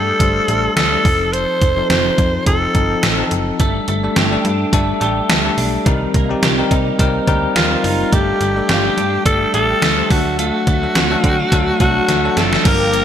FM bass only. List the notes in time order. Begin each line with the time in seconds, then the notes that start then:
Already playing: G2
0.20 G1
0.48 A1
0.77 D2
1.05 F1
1.62 F1
1.90 F1
2.18 F2
2.46 F1
2.75 G1
3.03 A1
3.32 F#1
3.60 G1
3.88 G1
4.17 G1
4.45 G2
4.73 G1
5.01 A1
5.29 D2
5.58 B1
5.86 C2
6.14 C2
6.43 C2
6.71 C3
6.99 C2
7.28 D2
7.56 D#2
7.84 F#1
8.13 G1
8.41 G1
8.69 G1
8.97 G2
9.26 G1
9.54 A1
9.82 D2
10.11 D2
10.67 D2
10.95 D2
11.24 D3
11.52 D2
11.80 C2
12.09 D2
12.37 F#1
12.65 G1